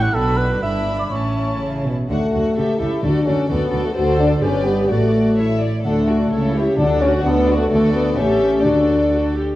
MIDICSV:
0, 0, Header, 1, 9, 480
1, 0, Start_track
1, 0, Key_signature, 2, "major"
1, 0, Tempo, 486224
1, 152, Time_signature, 2, 2, 24, 8
1, 2076, Tempo, 469116
1, 9701, End_track
2, 0, Start_track
2, 0, Title_t, "Violin section"
2, 0, Program_c, 0, 48
2, 0, Note_on_c, 0, 85, 38
2, 155, Note_off_c, 0, 85, 0
2, 161, Note_on_c, 0, 83, 44
2, 595, Note_off_c, 0, 83, 0
2, 626, Note_on_c, 0, 83, 46
2, 1096, Note_off_c, 0, 83, 0
2, 1114, Note_on_c, 0, 81, 38
2, 1878, Note_off_c, 0, 81, 0
2, 2082, Note_on_c, 0, 78, 37
2, 2300, Note_off_c, 0, 78, 0
2, 2312, Note_on_c, 0, 78, 33
2, 2550, Note_off_c, 0, 78, 0
2, 2557, Note_on_c, 0, 76, 38
2, 2773, Note_off_c, 0, 76, 0
2, 2785, Note_on_c, 0, 76, 30
2, 3023, Note_off_c, 0, 76, 0
2, 3023, Note_on_c, 0, 74, 41
2, 3258, Note_off_c, 0, 74, 0
2, 3270, Note_on_c, 0, 74, 40
2, 3485, Note_off_c, 0, 74, 0
2, 3497, Note_on_c, 0, 74, 46
2, 3708, Note_off_c, 0, 74, 0
2, 3720, Note_on_c, 0, 74, 39
2, 3963, Note_off_c, 0, 74, 0
2, 3973, Note_on_c, 0, 74, 50
2, 4417, Note_off_c, 0, 74, 0
2, 4441, Note_on_c, 0, 74, 50
2, 4920, Note_off_c, 0, 74, 0
2, 4942, Note_on_c, 0, 74, 43
2, 5418, Note_off_c, 0, 74, 0
2, 5423, Note_on_c, 0, 73, 40
2, 5698, Note_off_c, 0, 73, 0
2, 5917, Note_on_c, 0, 78, 39
2, 6139, Note_off_c, 0, 78, 0
2, 6155, Note_on_c, 0, 74, 38
2, 6394, Note_off_c, 0, 74, 0
2, 6395, Note_on_c, 0, 73, 43
2, 6617, Note_off_c, 0, 73, 0
2, 6644, Note_on_c, 0, 76, 36
2, 6876, Note_off_c, 0, 76, 0
2, 6883, Note_on_c, 0, 78, 47
2, 7097, Note_off_c, 0, 78, 0
2, 7104, Note_on_c, 0, 74, 45
2, 7332, Note_on_c, 0, 78, 48
2, 7341, Note_off_c, 0, 74, 0
2, 7568, Note_on_c, 0, 74, 42
2, 7572, Note_off_c, 0, 78, 0
2, 7794, Note_off_c, 0, 74, 0
2, 7807, Note_on_c, 0, 74, 52
2, 8252, Note_off_c, 0, 74, 0
2, 8278, Note_on_c, 0, 76, 57
2, 8763, Note_on_c, 0, 74, 46
2, 8766, Note_off_c, 0, 76, 0
2, 9541, Note_off_c, 0, 74, 0
2, 9701, End_track
3, 0, Start_track
3, 0, Title_t, "Cor anglais"
3, 0, Program_c, 1, 69
3, 20, Note_on_c, 1, 78, 62
3, 140, Note_on_c, 1, 69, 69
3, 154, Note_off_c, 1, 78, 0
3, 370, Note_on_c, 1, 71, 55
3, 385, Note_off_c, 1, 69, 0
3, 609, Note_off_c, 1, 71, 0
3, 615, Note_on_c, 1, 76, 64
3, 971, Note_off_c, 1, 76, 0
3, 976, Note_on_c, 1, 74, 51
3, 1033, Note_off_c, 1, 74, 0
3, 1088, Note_on_c, 1, 73, 49
3, 1575, Note_off_c, 1, 73, 0
3, 9701, End_track
4, 0, Start_track
4, 0, Title_t, "Violin section"
4, 0, Program_c, 2, 48
4, 0, Note_on_c, 2, 67, 43
4, 147, Note_on_c, 2, 66, 43
4, 153, Note_off_c, 2, 67, 0
4, 588, Note_off_c, 2, 66, 0
4, 621, Note_on_c, 2, 64, 48
4, 1088, Note_off_c, 2, 64, 0
4, 1100, Note_on_c, 2, 64, 38
4, 1855, Note_off_c, 2, 64, 0
4, 2068, Note_on_c, 2, 66, 37
4, 2302, Note_off_c, 2, 66, 0
4, 2314, Note_on_c, 2, 66, 29
4, 2533, Note_on_c, 2, 69, 41
4, 2551, Note_off_c, 2, 66, 0
4, 2768, Note_off_c, 2, 69, 0
4, 2781, Note_on_c, 2, 69, 37
4, 3021, Note_off_c, 2, 69, 0
4, 3035, Note_on_c, 2, 69, 40
4, 3247, Note_off_c, 2, 69, 0
4, 3259, Note_on_c, 2, 69, 37
4, 3487, Note_off_c, 2, 69, 0
4, 3500, Note_on_c, 2, 69, 51
4, 3712, Note_off_c, 2, 69, 0
4, 3724, Note_on_c, 2, 69, 51
4, 3965, Note_off_c, 2, 69, 0
4, 3973, Note_on_c, 2, 72, 49
4, 4417, Note_off_c, 2, 72, 0
4, 4457, Note_on_c, 2, 71, 49
4, 4933, Note_on_c, 2, 74, 43
4, 4938, Note_off_c, 2, 71, 0
4, 5413, Note_off_c, 2, 74, 0
4, 5422, Note_on_c, 2, 76, 48
4, 5650, Note_off_c, 2, 76, 0
4, 5656, Note_on_c, 2, 74, 48
4, 5893, Note_on_c, 2, 69, 37
4, 5906, Note_off_c, 2, 74, 0
4, 6126, Note_off_c, 2, 69, 0
4, 6158, Note_on_c, 2, 66, 35
4, 6391, Note_on_c, 2, 69, 45
4, 6396, Note_off_c, 2, 66, 0
4, 6615, Note_off_c, 2, 69, 0
4, 6640, Note_on_c, 2, 73, 43
4, 6874, Note_off_c, 2, 73, 0
4, 6884, Note_on_c, 2, 69, 48
4, 7097, Note_off_c, 2, 69, 0
4, 7123, Note_on_c, 2, 66, 46
4, 7350, Note_off_c, 2, 66, 0
4, 7355, Note_on_c, 2, 69, 55
4, 7584, Note_off_c, 2, 69, 0
4, 7597, Note_on_c, 2, 66, 52
4, 7823, Note_off_c, 2, 66, 0
4, 7826, Note_on_c, 2, 69, 54
4, 8263, Note_off_c, 2, 69, 0
4, 8289, Note_on_c, 2, 69, 59
4, 8762, Note_off_c, 2, 69, 0
4, 8782, Note_on_c, 2, 69, 41
4, 9536, Note_off_c, 2, 69, 0
4, 9701, End_track
5, 0, Start_track
5, 0, Title_t, "Viola section"
5, 0, Program_c, 3, 48
5, 0, Note_on_c, 3, 64, 41
5, 156, Note_off_c, 3, 64, 0
5, 168, Note_on_c, 3, 62, 45
5, 599, Note_off_c, 3, 62, 0
5, 634, Note_on_c, 3, 62, 43
5, 1100, Note_off_c, 3, 62, 0
5, 1105, Note_on_c, 3, 61, 42
5, 1858, Note_off_c, 3, 61, 0
5, 2072, Note_on_c, 3, 66, 37
5, 2299, Note_off_c, 3, 66, 0
5, 2312, Note_on_c, 3, 66, 29
5, 2550, Note_off_c, 3, 66, 0
5, 2561, Note_on_c, 3, 67, 36
5, 2776, Note_off_c, 3, 67, 0
5, 2788, Note_on_c, 3, 67, 34
5, 3025, Note_off_c, 3, 67, 0
5, 3037, Note_on_c, 3, 66, 44
5, 3247, Note_off_c, 3, 66, 0
5, 3259, Note_on_c, 3, 66, 38
5, 3489, Note_off_c, 3, 66, 0
5, 3501, Note_on_c, 3, 66, 40
5, 3721, Note_off_c, 3, 66, 0
5, 3733, Note_on_c, 3, 66, 41
5, 3969, Note_off_c, 3, 66, 0
5, 3979, Note_on_c, 3, 69, 52
5, 4420, Note_off_c, 3, 69, 0
5, 4446, Note_on_c, 3, 67, 50
5, 4929, Note_on_c, 3, 66, 42
5, 4932, Note_off_c, 3, 67, 0
5, 5421, Note_off_c, 3, 66, 0
5, 5424, Note_on_c, 3, 64, 35
5, 5704, Note_off_c, 3, 64, 0
5, 5906, Note_on_c, 3, 62, 38
5, 6133, Note_off_c, 3, 62, 0
5, 6148, Note_on_c, 3, 66, 36
5, 6385, Note_on_c, 3, 64, 39
5, 6391, Note_off_c, 3, 66, 0
5, 6612, Note_off_c, 3, 64, 0
5, 6632, Note_on_c, 3, 67, 42
5, 6866, Note_on_c, 3, 62, 52
5, 6870, Note_off_c, 3, 67, 0
5, 7088, Note_off_c, 3, 62, 0
5, 7095, Note_on_c, 3, 66, 45
5, 7334, Note_on_c, 3, 62, 51
5, 7336, Note_off_c, 3, 66, 0
5, 7571, Note_on_c, 3, 66, 45
5, 7573, Note_off_c, 3, 62, 0
5, 7803, Note_off_c, 3, 66, 0
5, 7815, Note_on_c, 3, 66, 50
5, 8257, Note_off_c, 3, 66, 0
5, 8293, Note_on_c, 3, 67, 47
5, 8760, Note_on_c, 3, 66, 45
5, 8764, Note_off_c, 3, 67, 0
5, 9207, Note_off_c, 3, 66, 0
5, 9254, Note_on_c, 3, 66, 41
5, 9488, Note_off_c, 3, 66, 0
5, 9498, Note_on_c, 3, 67, 43
5, 9701, Note_off_c, 3, 67, 0
5, 9701, End_track
6, 0, Start_track
6, 0, Title_t, "French horn section"
6, 0, Program_c, 4, 60
6, 2067, Note_on_c, 4, 57, 52
6, 2750, Note_off_c, 4, 57, 0
6, 2778, Note_on_c, 4, 64, 56
6, 3025, Note_off_c, 4, 64, 0
6, 3039, Note_on_c, 4, 62, 57
6, 3263, Note_on_c, 4, 61, 66
6, 3270, Note_off_c, 4, 62, 0
6, 3505, Note_off_c, 4, 61, 0
6, 3513, Note_on_c, 4, 59, 57
6, 3858, Note_off_c, 4, 59, 0
6, 3862, Note_on_c, 4, 57, 58
6, 3915, Note_off_c, 4, 57, 0
6, 3984, Note_on_c, 4, 66, 72
6, 4213, Note_off_c, 4, 66, 0
6, 4222, Note_on_c, 4, 62, 72
6, 4328, Note_off_c, 4, 62, 0
6, 4454, Note_on_c, 4, 61, 70
6, 4682, Note_on_c, 4, 59, 60
6, 4689, Note_off_c, 4, 61, 0
6, 4930, Note_off_c, 4, 59, 0
6, 4937, Note_on_c, 4, 57, 51
6, 5654, Note_off_c, 4, 57, 0
6, 5911, Note_on_c, 4, 57, 60
6, 6592, Note_off_c, 4, 57, 0
6, 6616, Note_on_c, 4, 64, 60
6, 6726, Note_off_c, 4, 64, 0
6, 6849, Note_on_c, 4, 62, 76
6, 7091, Note_off_c, 4, 62, 0
6, 7101, Note_on_c, 4, 61, 78
6, 7208, Note_off_c, 4, 61, 0
6, 7328, Note_on_c, 4, 59, 75
6, 7668, Note_on_c, 4, 57, 66
6, 7681, Note_off_c, 4, 59, 0
6, 7784, Note_off_c, 4, 57, 0
6, 7797, Note_on_c, 4, 57, 71
6, 8037, Note_off_c, 4, 57, 0
6, 8040, Note_on_c, 4, 59, 69
6, 8279, Note_off_c, 4, 59, 0
6, 8288, Note_on_c, 4, 61, 68
6, 8749, Note_on_c, 4, 62, 63
6, 8771, Note_off_c, 4, 61, 0
6, 9498, Note_off_c, 4, 62, 0
6, 9701, End_track
7, 0, Start_track
7, 0, Title_t, "Cello section"
7, 0, Program_c, 5, 48
7, 155, Note_on_c, 5, 47, 48
7, 592, Note_off_c, 5, 47, 0
7, 631, Note_on_c, 5, 43, 43
7, 1107, Note_on_c, 5, 45, 36
7, 1108, Note_off_c, 5, 43, 0
7, 1537, Note_off_c, 5, 45, 0
7, 1594, Note_on_c, 5, 49, 47
7, 1820, Note_off_c, 5, 49, 0
7, 1835, Note_on_c, 5, 47, 44
7, 2075, Note_off_c, 5, 47, 0
7, 2075, Note_on_c, 5, 50, 34
7, 2157, Note_off_c, 5, 50, 0
7, 2325, Note_on_c, 5, 50, 34
7, 2407, Note_off_c, 5, 50, 0
7, 2565, Note_on_c, 5, 49, 39
7, 2646, Note_off_c, 5, 49, 0
7, 2800, Note_on_c, 5, 49, 37
7, 2882, Note_off_c, 5, 49, 0
7, 3039, Note_on_c, 5, 50, 40
7, 3121, Note_off_c, 5, 50, 0
7, 3272, Note_on_c, 5, 50, 42
7, 3354, Note_off_c, 5, 50, 0
7, 3506, Note_on_c, 5, 50, 47
7, 3588, Note_off_c, 5, 50, 0
7, 3743, Note_on_c, 5, 50, 50
7, 3825, Note_off_c, 5, 50, 0
7, 3977, Note_on_c, 5, 50, 47
7, 4419, Note_off_c, 5, 50, 0
7, 4451, Note_on_c, 5, 43, 46
7, 4935, Note_off_c, 5, 43, 0
7, 4936, Note_on_c, 5, 45, 38
7, 5704, Note_off_c, 5, 45, 0
7, 5910, Note_on_c, 5, 50, 47
7, 6336, Note_off_c, 5, 50, 0
7, 6397, Note_on_c, 5, 49, 50
7, 6816, Note_off_c, 5, 49, 0
7, 6875, Note_on_c, 5, 50, 50
7, 7288, Note_off_c, 5, 50, 0
7, 7341, Note_on_c, 5, 50, 58
7, 7757, Note_off_c, 5, 50, 0
7, 7806, Note_on_c, 5, 50, 48
7, 8252, Note_off_c, 5, 50, 0
7, 8285, Note_on_c, 5, 45, 55
7, 8768, Note_on_c, 5, 50, 45
7, 8769, Note_off_c, 5, 45, 0
7, 9544, Note_off_c, 5, 50, 0
7, 9701, End_track
8, 0, Start_track
8, 0, Title_t, "Timpani"
8, 0, Program_c, 6, 47
8, 3021, Note_on_c, 6, 50, 47
8, 3698, Note_off_c, 6, 50, 0
8, 5911, Note_on_c, 6, 50, 46
8, 6359, Note_off_c, 6, 50, 0
8, 6861, Note_on_c, 6, 50, 55
8, 7532, Note_off_c, 6, 50, 0
8, 9701, End_track
9, 0, Start_track
9, 0, Title_t, "Double bass section"
9, 0, Program_c, 7, 48
9, 0, Note_on_c, 7, 33, 53
9, 101, Note_off_c, 7, 33, 0
9, 153, Note_on_c, 7, 35, 49
9, 591, Note_off_c, 7, 35, 0
9, 632, Note_on_c, 7, 31, 47
9, 1108, Note_on_c, 7, 33, 39
9, 1109, Note_off_c, 7, 31, 0
9, 1859, Note_off_c, 7, 33, 0
9, 2074, Note_on_c, 7, 38, 37
9, 2155, Note_off_c, 7, 38, 0
9, 2320, Note_on_c, 7, 38, 32
9, 2402, Note_off_c, 7, 38, 0
9, 2566, Note_on_c, 7, 37, 39
9, 2648, Note_off_c, 7, 37, 0
9, 2797, Note_on_c, 7, 37, 44
9, 2879, Note_off_c, 7, 37, 0
9, 3037, Note_on_c, 7, 38, 44
9, 3119, Note_off_c, 7, 38, 0
9, 3272, Note_on_c, 7, 38, 43
9, 3354, Note_off_c, 7, 38, 0
9, 3516, Note_on_c, 7, 38, 51
9, 3597, Note_off_c, 7, 38, 0
9, 3749, Note_on_c, 7, 38, 51
9, 3831, Note_off_c, 7, 38, 0
9, 3983, Note_on_c, 7, 38, 52
9, 4422, Note_off_c, 7, 38, 0
9, 4460, Note_on_c, 7, 31, 46
9, 4939, Note_off_c, 7, 31, 0
9, 4943, Note_on_c, 7, 33, 38
9, 5708, Note_off_c, 7, 33, 0
9, 5913, Note_on_c, 7, 38, 46
9, 6337, Note_off_c, 7, 38, 0
9, 6390, Note_on_c, 7, 37, 47
9, 6813, Note_off_c, 7, 37, 0
9, 6867, Note_on_c, 7, 38, 62
9, 7285, Note_off_c, 7, 38, 0
9, 7344, Note_on_c, 7, 38, 58
9, 7758, Note_off_c, 7, 38, 0
9, 7817, Note_on_c, 7, 38, 52
9, 8258, Note_off_c, 7, 38, 0
9, 8293, Note_on_c, 7, 33, 48
9, 8774, Note_off_c, 7, 33, 0
9, 8774, Note_on_c, 7, 38, 43
9, 9547, Note_off_c, 7, 38, 0
9, 9701, End_track
0, 0, End_of_file